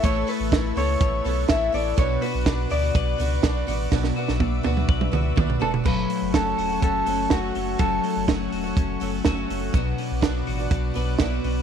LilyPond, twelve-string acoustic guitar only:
\new Staff \with { instrumentName = "Twelve-string acoustic guitar" } { \time 4/4 \key b \minor \tempo 4 = 124 <a b e' a' cis''>8 <b e' a' cis''>4 <b e' a' cis''>4 <b e' a' cis''>8 <b e' a' cis''>8 <b e' a' cis''>8 | <b, fis b d' fis' b'>8 <b d' fis' b'>4 <b d' fis' b'>4 <b d' fis' b'>8 <b d' fis' b'>8 <b d' fis' b'>8 | <b, fis b d' fis' b'>8 <b d' fis' b'>4 <b d' fis' b'>4 <b d' fis' b'>8 <b d' fis' b'>8 <b d' fis' b'>8 | <fis a cis' fis'>4 <fis a cis' fis'>8. <a cis' fis'>8. <fis a cis' fis'>8 <fis a cis' fis'>4 |
<fis a cis' fis'>4 <fis a cis' fis'>8. <a cis' fis'>8. <fis a cis' fis'>8 <fis a cis' fis'>4 | <fis b d' fis'>4 <fis b d' fis'>8. <b d' fis'>8. <fis b d' fis'>8 <b, fis b d' fis'>4 | }